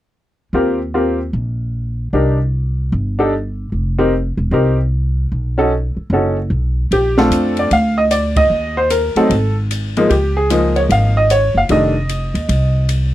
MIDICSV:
0, 0, Header, 1, 5, 480
1, 0, Start_track
1, 0, Key_signature, -2, "major"
1, 0, Tempo, 398406
1, 646, Time_signature, 4, 2, 24, 8
1, 15835, End_track
2, 0, Start_track
2, 0, Title_t, "Upright piano"
2, 0, Program_c, 0, 0
2, 653, Note_on_c, 0, 60, 46
2, 655, Note_on_c, 0, 65, 43
2, 660, Note_on_c, 0, 67, 44
2, 665, Note_on_c, 0, 70, 56
2, 927, Note_off_c, 0, 60, 0
2, 929, Note_off_c, 0, 65, 0
2, 931, Note_off_c, 0, 67, 0
2, 934, Note_off_c, 0, 70, 0
2, 1135, Note_on_c, 0, 60, 46
2, 1135, Note_on_c, 0, 65, 42
2, 1146, Note_on_c, 0, 67, 42
2, 1149, Note_on_c, 0, 70, 50
2, 1409, Note_off_c, 0, 60, 0
2, 1409, Note_off_c, 0, 65, 0
2, 1415, Note_off_c, 0, 67, 0
2, 1416, Note_off_c, 0, 70, 0
2, 2570, Note_on_c, 0, 62, 49
2, 2577, Note_on_c, 0, 63, 43
2, 2580, Note_on_c, 0, 67, 45
2, 2588, Note_on_c, 0, 70, 51
2, 2848, Note_off_c, 0, 62, 0
2, 2851, Note_off_c, 0, 63, 0
2, 2853, Note_off_c, 0, 67, 0
2, 2857, Note_off_c, 0, 70, 0
2, 3839, Note_on_c, 0, 62, 55
2, 3845, Note_on_c, 0, 63, 53
2, 3852, Note_on_c, 0, 67, 51
2, 3852, Note_on_c, 0, 69, 63
2, 3994, Note_off_c, 0, 62, 0
2, 3997, Note_off_c, 0, 63, 0
2, 4001, Note_off_c, 0, 67, 0
2, 4001, Note_off_c, 0, 69, 0
2, 4801, Note_on_c, 0, 60, 58
2, 4801, Note_on_c, 0, 63, 54
2, 4807, Note_on_c, 0, 67, 50
2, 4810, Note_on_c, 0, 70, 64
2, 4956, Note_off_c, 0, 60, 0
2, 4956, Note_off_c, 0, 63, 0
2, 4959, Note_off_c, 0, 67, 0
2, 4960, Note_off_c, 0, 70, 0
2, 5448, Note_on_c, 0, 60, 51
2, 5449, Note_on_c, 0, 63, 50
2, 5462, Note_on_c, 0, 67, 50
2, 5465, Note_on_c, 0, 70, 61
2, 5729, Note_off_c, 0, 60, 0
2, 5729, Note_off_c, 0, 63, 0
2, 5736, Note_off_c, 0, 67, 0
2, 5737, Note_off_c, 0, 70, 0
2, 6719, Note_on_c, 0, 61, 57
2, 6727, Note_on_c, 0, 63, 55
2, 6731, Note_on_c, 0, 66, 51
2, 6731, Note_on_c, 0, 69, 70
2, 6876, Note_off_c, 0, 61, 0
2, 6880, Note_off_c, 0, 63, 0
2, 6882, Note_off_c, 0, 66, 0
2, 6882, Note_off_c, 0, 69, 0
2, 7381, Note_on_c, 0, 61, 48
2, 7385, Note_on_c, 0, 63, 43
2, 7390, Note_on_c, 0, 66, 44
2, 7392, Note_on_c, 0, 69, 49
2, 7656, Note_off_c, 0, 61, 0
2, 7658, Note_off_c, 0, 63, 0
2, 7660, Note_off_c, 0, 66, 0
2, 7662, Note_off_c, 0, 69, 0
2, 8346, Note_on_c, 0, 67, 80
2, 8628, Note_off_c, 0, 67, 0
2, 8645, Note_on_c, 0, 57, 64
2, 8646, Note_on_c, 0, 60, 58
2, 8648, Note_on_c, 0, 62, 57
2, 8657, Note_on_c, 0, 65, 70
2, 8657, Note_on_c, 0, 69, 75
2, 9097, Note_off_c, 0, 69, 0
2, 9147, Note_on_c, 0, 74, 70
2, 9262, Note_off_c, 0, 57, 0
2, 9262, Note_off_c, 0, 60, 0
2, 9263, Note_off_c, 0, 62, 0
2, 9267, Note_off_c, 0, 65, 0
2, 9311, Note_off_c, 0, 74, 0
2, 9311, Note_on_c, 0, 77, 88
2, 9590, Note_off_c, 0, 77, 0
2, 9610, Note_on_c, 0, 75, 83
2, 9670, Note_off_c, 0, 75, 0
2, 9772, Note_on_c, 0, 74, 77
2, 10085, Note_on_c, 0, 75, 95
2, 10091, Note_off_c, 0, 74, 0
2, 10570, Note_on_c, 0, 72, 73
2, 10578, Note_off_c, 0, 75, 0
2, 10729, Note_on_c, 0, 70, 71
2, 10742, Note_off_c, 0, 72, 0
2, 11043, Note_on_c, 0, 54, 56
2, 11044, Note_on_c, 0, 57, 48
2, 11048, Note_on_c, 0, 69, 68
2, 11049, Note_off_c, 0, 70, 0
2, 11050, Note_on_c, 0, 60, 53
2, 11055, Note_on_c, 0, 63, 60
2, 11197, Note_off_c, 0, 54, 0
2, 11197, Note_off_c, 0, 57, 0
2, 11200, Note_off_c, 0, 60, 0
2, 11203, Note_off_c, 0, 63, 0
2, 11491, Note_off_c, 0, 69, 0
2, 12013, Note_on_c, 0, 53, 66
2, 12015, Note_on_c, 0, 56, 59
2, 12019, Note_on_c, 0, 58, 63
2, 12027, Note_on_c, 0, 63, 62
2, 12161, Note_off_c, 0, 53, 0
2, 12162, Note_off_c, 0, 56, 0
2, 12162, Note_on_c, 0, 67, 72
2, 12164, Note_off_c, 0, 58, 0
2, 12168, Note_off_c, 0, 63, 0
2, 12453, Note_off_c, 0, 67, 0
2, 12490, Note_on_c, 0, 68, 71
2, 12654, Note_on_c, 0, 53, 57
2, 12657, Note_on_c, 0, 56, 54
2, 12661, Note_on_c, 0, 58, 54
2, 12666, Note_on_c, 0, 63, 63
2, 12931, Note_off_c, 0, 68, 0
2, 12964, Note_on_c, 0, 73, 66
2, 13024, Note_off_c, 0, 73, 0
2, 13154, Note_on_c, 0, 77, 77
2, 13379, Note_off_c, 0, 53, 0
2, 13380, Note_off_c, 0, 56, 0
2, 13382, Note_off_c, 0, 58, 0
2, 13385, Note_off_c, 0, 63, 0
2, 13458, Note_on_c, 0, 75, 85
2, 13460, Note_off_c, 0, 77, 0
2, 13608, Note_off_c, 0, 75, 0
2, 13628, Note_on_c, 0, 73, 87
2, 13906, Note_off_c, 0, 73, 0
2, 13945, Note_on_c, 0, 77, 82
2, 14006, Note_off_c, 0, 77, 0
2, 14095, Note_on_c, 0, 51, 51
2, 14096, Note_on_c, 0, 55, 44
2, 14104, Note_on_c, 0, 57, 43
2, 14107, Note_on_c, 0, 62, 53
2, 14113, Note_on_c, 0, 75, 82
2, 14370, Note_off_c, 0, 51, 0
2, 14370, Note_off_c, 0, 55, 0
2, 14374, Note_off_c, 0, 57, 0
2, 14376, Note_off_c, 0, 62, 0
2, 15491, Note_off_c, 0, 75, 0
2, 15835, End_track
3, 0, Start_track
3, 0, Title_t, "Upright bass"
3, 0, Program_c, 1, 32
3, 637, Note_on_c, 1, 39, 63
3, 1555, Note_off_c, 1, 39, 0
3, 1605, Note_on_c, 1, 34, 68
3, 2520, Note_off_c, 1, 34, 0
3, 2565, Note_on_c, 1, 36, 63
3, 3480, Note_off_c, 1, 36, 0
3, 3521, Note_on_c, 1, 31, 75
3, 4439, Note_off_c, 1, 31, 0
3, 4483, Note_on_c, 1, 29, 56
3, 5229, Note_off_c, 1, 29, 0
3, 5270, Note_on_c, 1, 28, 64
3, 5429, Note_off_c, 1, 28, 0
3, 5436, Note_on_c, 1, 36, 76
3, 6358, Note_off_c, 1, 36, 0
3, 6405, Note_on_c, 1, 35, 64
3, 7151, Note_off_c, 1, 35, 0
3, 7347, Note_on_c, 1, 30, 75
3, 7807, Note_off_c, 1, 30, 0
3, 7832, Note_on_c, 1, 35, 67
3, 8289, Note_off_c, 1, 35, 0
3, 8324, Note_on_c, 1, 34, 69
3, 8776, Note_off_c, 1, 34, 0
3, 8798, Note_on_c, 1, 41, 67
3, 9253, Note_off_c, 1, 41, 0
3, 9287, Note_on_c, 1, 38, 77
3, 10202, Note_off_c, 1, 38, 0
3, 10239, Note_on_c, 1, 39, 62
3, 10986, Note_off_c, 1, 39, 0
3, 11202, Note_on_c, 1, 32, 77
3, 12118, Note_off_c, 1, 32, 0
3, 12165, Note_on_c, 1, 37, 69
3, 13080, Note_off_c, 1, 37, 0
3, 13125, Note_on_c, 1, 32, 80
3, 13867, Note_off_c, 1, 32, 0
3, 13909, Note_on_c, 1, 30, 64
3, 14073, Note_off_c, 1, 30, 0
3, 14086, Note_on_c, 1, 29, 62
3, 14827, Note_off_c, 1, 29, 0
3, 14870, Note_on_c, 1, 39, 65
3, 15033, Note_off_c, 1, 39, 0
3, 15044, Note_on_c, 1, 36, 78
3, 15835, Note_off_c, 1, 36, 0
3, 15835, End_track
4, 0, Start_track
4, 0, Title_t, "Muted upright bass strokes"
4, 7187, Note_on_c, 9, 29, 36
4, 7308, Note_off_c, 9, 29, 0
4, 11030, Note_on_c, 9, 29, 34
4, 11151, Note_off_c, 9, 29, 0
4, 15835, End_track
5, 0, Start_track
5, 0, Title_t, "Drums"
5, 8330, Note_on_c, 9, 36, 28
5, 8333, Note_on_c, 9, 51, 51
5, 8451, Note_off_c, 9, 36, 0
5, 8453, Note_off_c, 9, 51, 0
5, 8643, Note_on_c, 9, 38, 44
5, 8763, Note_off_c, 9, 38, 0
5, 8813, Note_on_c, 9, 44, 54
5, 8813, Note_on_c, 9, 51, 56
5, 8934, Note_off_c, 9, 44, 0
5, 8934, Note_off_c, 9, 51, 0
5, 9116, Note_on_c, 9, 51, 41
5, 9237, Note_off_c, 9, 51, 0
5, 9289, Note_on_c, 9, 36, 31
5, 9289, Note_on_c, 9, 51, 52
5, 9409, Note_off_c, 9, 36, 0
5, 9409, Note_off_c, 9, 51, 0
5, 9768, Note_on_c, 9, 44, 55
5, 9768, Note_on_c, 9, 51, 59
5, 9888, Note_off_c, 9, 44, 0
5, 9888, Note_off_c, 9, 51, 0
5, 10076, Note_on_c, 9, 36, 74
5, 10076, Note_on_c, 9, 51, 63
5, 10196, Note_off_c, 9, 51, 0
5, 10197, Note_off_c, 9, 36, 0
5, 10726, Note_on_c, 9, 44, 50
5, 10726, Note_on_c, 9, 51, 59
5, 10846, Note_off_c, 9, 44, 0
5, 10846, Note_off_c, 9, 51, 0
5, 11037, Note_on_c, 9, 51, 37
5, 11158, Note_off_c, 9, 51, 0
5, 11209, Note_on_c, 9, 36, 34
5, 11211, Note_on_c, 9, 51, 52
5, 11330, Note_off_c, 9, 36, 0
5, 11331, Note_off_c, 9, 51, 0
5, 11694, Note_on_c, 9, 44, 47
5, 11694, Note_on_c, 9, 51, 57
5, 11815, Note_off_c, 9, 44, 0
5, 11815, Note_off_c, 9, 51, 0
5, 12006, Note_on_c, 9, 51, 36
5, 12127, Note_off_c, 9, 51, 0
5, 12171, Note_on_c, 9, 36, 33
5, 12173, Note_on_c, 9, 51, 54
5, 12291, Note_off_c, 9, 36, 0
5, 12294, Note_off_c, 9, 51, 0
5, 12653, Note_on_c, 9, 44, 42
5, 12653, Note_on_c, 9, 51, 56
5, 12773, Note_off_c, 9, 44, 0
5, 12773, Note_off_c, 9, 51, 0
5, 12964, Note_on_c, 9, 51, 37
5, 13084, Note_off_c, 9, 51, 0
5, 13132, Note_on_c, 9, 36, 30
5, 13137, Note_on_c, 9, 51, 57
5, 13253, Note_off_c, 9, 36, 0
5, 13258, Note_off_c, 9, 51, 0
5, 13614, Note_on_c, 9, 44, 48
5, 13614, Note_on_c, 9, 51, 57
5, 13734, Note_off_c, 9, 44, 0
5, 13734, Note_off_c, 9, 51, 0
5, 14085, Note_on_c, 9, 51, 48
5, 14090, Note_on_c, 9, 36, 31
5, 14205, Note_off_c, 9, 51, 0
5, 14210, Note_off_c, 9, 36, 0
5, 14570, Note_on_c, 9, 44, 43
5, 14570, Note_on_c, 9, 51, 51
5, 14691, Note_off_c, 9, 44, 0
5, 14691, Note_off_c, 9, 51, 0
5, 14881, Note_on_c, 9, 51, 40
5, 15001, Note_off_c, 9, 51, 0
5, 15048, Note_on_c, 9, 36, 31
5, 15050, Note_on_c, 9, 51, 60
5, 15169, Note_off_c, 9, 36, 0
5, 15170, Note_off_c, 9, 51, 0
5, 15526, Note_on_c, 9, 44, 52
5, 15526, Note_on_c, 9, 51, 57
5, 15647, Note_off_c, 9, 44, 0
5, 15647, Note_off_c, 9, 51, 0
5, 15835, End_track
0, 0, End_of_file